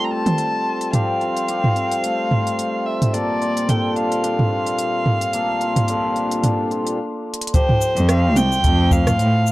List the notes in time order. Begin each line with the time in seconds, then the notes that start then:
Already playing: F3 G3 A3 C4 D4 F4 G4 A4
0.04 A#5
0.11 F4 A5
0.26 mid tom, open hi-hat
0.38 open hi-hat
0.81 open hi-hat
0.93 F3 G4 F5, mid tom, open hi-hat
1.21 F4, open hi-hat
1.37 open hi-hat
1.48 C4 F4 G4, open hi-hat
1.64 mid tom
1.76 C4, open hi-hat
1.91 open hi-hat
2.04 A3, open hi-hat
2.31 F4, mid tom
2.47 open hi-hat
2.59 open hi-hat
2.86 E5
3.02 mid tom, open hi-hat
3.14 A#2 A#3 A4 D5, open hi-hat
3.41 F4, open hi-hat
3.57 open hi-hat
3.68 D4 F4 A4 G5, mid tom, open hi-hat
3.96 D4 F5, open hi-hat
4.12 open hi-hat
4.23 D4, open hi-hat
4.39 mid tom
4.51 F4
4.66 open hi-hat
4.78 open hi-hat
5.06 mid tom
5.21 open hi-hat
5.33 A#3 A4, open hi-hat
5.61 F4, open hi-hat
5.76 mid tom, open hi-hat
5.88 D4 F4 A4, open hi-hat
6.16 D4, open hi-hat
6.31 open hi-hat
6.43 D4, mid tom, open hi-hat
6.71 F4, open hi-hat
6.87 open hi-hat
7.34 closed hi-hat
7.42 closed hi-hat
7.47 closed hi-hat
7.54 F3 G4 C5, kick, open hi-hat, cabasa
7.69 mid tom
7.81 open hi-hat, cabasa
7.97 F2, open hi-hat, cabasa
8.09 C4 F5, cross-stick, open hi-hat, cabasa
8.36 C2 G5, mid tom, open hi-hat, cabasa
8.52 cabasa
8.64 F2 A3, kick, open hi-hat, cabasa
8.91 F5, kick, cabasa
9.07 cross-stick, mid tom, open hi-hat, cabasa
9.19 A2, open hi-hat, cabasa
9.47 cabasa